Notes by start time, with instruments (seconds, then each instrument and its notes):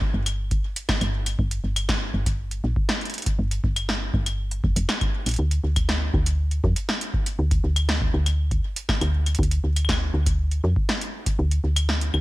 Already playing: fm bass G1
0.01 kick
0.14 fm bass G1
0.26 closed hi-hat, claves
0.51 kick, closed hi-hat
0.76 closed hi-hat
0.89 kick, snare, claves
1.01 fm bass G1, closed hi-hat, claves
1.26 closed hi-hat, claves
1.39 fm bass G1, kick
1.51 closed hi-hat
1.64 fm bass G1
1.76 closed hi-hat, claves
1.89 kick, snare
2.14 fm bass G1
2.26 kick, closed hi-hat
2.51 closed hi-hat
2.64 fm bass A#1
2.76 kick
2.89 snare
3.01 closed hi-hat
3.05 closed hi-hat
3.10 closed hi-hat
3.14 closed hi-hat
3.18 closed hi-hat
3.22 closed hi-hat
3.26 kick, closed hi-hat
3.39 fm bass G1
3.51 closed hi-hat
3.64 fm bass G1, kick
3.76 closed hi-hat, claves
3.89 snare
4.14 fm bass G1, kick
4.26 closed hi-hat, claves
4.51 closed hi-hat
4.64 fm bass F1, kick
4.76 fm bass F1, closed hi-hat
4.89 snare, claves
5.01 kick, closed hi-hat, claves
5.26 fm bass A#1, closed hi-hat, claves
5.29 closed hi-hat
5.31 closed hi-hat
5.34 closed hi-hat
5.36 fm bass D2, closed hi-hat
5.51 closed hi-hat
5.64 fm bass D2
5.76 kick, closed hi-hat, claves
5.89 snare
6.14 fm bass D2, kick
6.26 closed hi-hat
6.51 closed hi-hat
6.64 fm bass F2, kick
6.76 closed hi-hat
6.89 snare
7.01 closed hi-hat
7.14 kick
7.26 closed hi-hat
7.39 fm bass D2
7.51 kick, closed hi-hat
7.64 fm bass D2
7.76 closed hi-hat, claves
7.89 snare
8.01 kick
8.14 fm bass D2
8.26 closed hi-hat, claves
8.51 kick, closed hi-hat
8.76 closed hi-hat
8.89 kick, snare, claves
9.01 fm bass D2, closed hi-hat, claves
9.26 closed hi-hat, claves
9.35 closed hi-hat
9.39 fm bass D2, kick
9.43 closed hi-hat
9.51 closed hi-hat
9.64 fm bass D2
9.76 closed hi-hat, claves
9.85 claves
9.89 kick, snare
9.93 claves
10.14 fm bass D2
10.26 kick, closed hi-hat
10.51 closed hi-hat
10.64 fm bass F2
10.76 kick
10.89 snare
11.01 closed hi-hat
11.26 kick, closed hi-hat
11.39 fm bass D2
11.51 closed hi-hat
11.64 fm bass D2
11.76 closed hi-hat, claves
11.89 snare
12.01 closed hi-hat
12.14 fm bass D2, claves